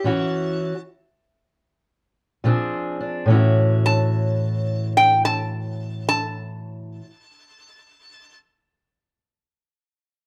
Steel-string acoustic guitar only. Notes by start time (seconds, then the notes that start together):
0.04 A2 E3 C#4 E4 F#4
2.44 A#2 F3 C4 D4 G#4
3.00 D4
3.26 A2 E3
3.30 C#4 E4
3.34 F#4